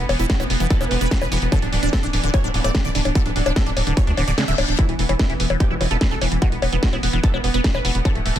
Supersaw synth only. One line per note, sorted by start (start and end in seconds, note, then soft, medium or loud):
0.09 0.14 B3 medium
0.19 0.24 B3 medium
0.30 0.34 F#4 medium
0.40 0.44 B3 medium
0.50 0.55 B3 medium
0.60 0.65 B3 medium
0.70 0.75 A4 loud
0.81 0.85 B3 medium
0.91 0.95 B3 medium
1.01 1.06 B4 medium
1.11 1.16 B3 medium
1.22 1.26 B4 medium
1.32 1.36 B3 medium
1.42 1.46 B3 medium
1.52 1.57 A4 loud
1.62 1.67 D4 medium
1.73 1.77 D4 medium
1.83 1.87 D4 medium
1.93 1.97 A4 medium
2.03 2.08 D4 medium
2.13 2.18 D4 medium
2.24 2.28 D4 medium
2.34 2.38 C#5 loud
2.44 2.48 D4 medium
2.54 2.59 D4 medium
2.64 2.69 D5 medium
2.75 2.79 D4 medium
2.85 2.89 D5 loud
2.95 2.99 D4 medium
3.05 3.10 D4 medium
3.15 3.20 A4 loud
3.26 3.30 D4 medium
3.36 3.40 D4 medium
3.46 3.51 D4 medium
3.56 3.61 A4 medium
3.66 3.71 D4 medium
3.77 3.81 D4 medium
3.87 3.91 D4 medium
3.97 4.02 C#5 loud
4.07 4.12 D4 medium
4.17 4.22 D4 medium
4.28 4.32 D5 medium
4.38 4.42 D4 medium
4.48 4.53 E5 loud
4.58 4.63 D4 medium
4.68 4.73 D4 medium
4.79 4.83 E4 loud
4.89 4.93 E3 medium
4.99 5.04 E3 medium
5.09 5.14 E3 medium
5.19 5.24 E4 medium
5.30 5.34 E3 medium
5.40 5.44 E3 medium
5.50 5.55 E3 medium
5.60 5.65 G4 loud
5.70 5.75 E3 medium
5.81 5.85 E3 medium
5.91 5.95 A4 medium
6.01 6.06 E3 medium
6.11 6.16 A4 loud
6.21 6.26 E3 medium
6.32 6.36 E3 medium
6.42 6.46 F#4 loud
6.52 6.57 B3 medium
6.62 6.67 B3 medium
6.72 6.77 B3 medium
6.83 6.87 F#4 loud
6.93 6.97 B3 medium
7.03 7.08 B3 medium
7.13 7.18 B3 medium
7.23 7.28 A4 loud
7.34 7.38 B3 medium
7.44 7.48 B3 medium
7.54 7.59 B4 medium
7.64 7.69 B3 medium
7.74 7.79 B4 medium
7.85 7.89 B3 medium
7.95 7.99 B3 medium
8.05 8.10 A4 loud
8.15 8.20 A3 medium
8.25 8.30 A3 medium
8.36 8.39 A3 medium